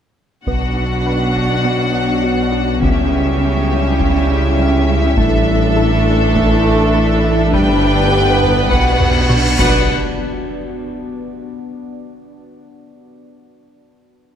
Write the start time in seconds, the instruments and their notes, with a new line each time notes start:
0.45 double bass section B1, sub bass B1, trombone section B2 F#3, cello section B2, ambient pad F#3 B3 F#4 D5, synth arpeggio sound B3, french horn section D4 F#4, viola section D4, violin section F#4 F#5, taiko
1.06 synth arpeggio sound B4
1.36 taiko
1.65 synth arpeggio sound B3
2.24 synth arpeggio sound F#4
2.52 synth arpeggio sound F#4
2.82 sub bass C#2, double bass section C#2, trombone section C#3 G3, cello section C#3, synth arpeggio sound C#3, ambient pad G3 C#4 E4 E5, french horn section C#4 E4, viola section C#4, violin section G4 E5, taiko
3.41 synth arpeggio sound C#4
4.00 synth arpeggio sound C#3, taiko
4.59 synth arpeggio sound G3
4.89 synth arpeggio sound G3
5.17 sub bass A1, double bass section A1, cello section A2, trombone section E3 A3, synth arpeggio sound A3, ambient pad A3 D4, french horn section D4, viola section D4, violin section A4, taiko
5.77 synth arpeggio sound A4
6.36 synth arpeggio sound A3, taiko
6.94 synth arpeggio sound E4
7.24 synth arpeggio sound E4
7.53 sub bass G1, double bass section G1, cello section G2, trombone section D3 B3, synth arpeggio sound G3, ambient pad B3 G4 D5, french horn section G4, violin section B4 G5, taiko, cymbal swell
8.12 synth arpeggio sound G4
8.42 taiko low-mid
8.70 sub bass B1, double bass section B1, trombone section B2, cello section B2, synth arpeggio sound B3, french horn section F#4, violin section F#5, taiko
9.00 taiko low-mid
9.29 synth arpeggio sound F#4, taiko mid
9.58 sub bass B1, double bass section B1, cello section B2, trombone section B2 B3, french horn section D4 F#4, viola section D4, violin section B4 F#5, taiko, impact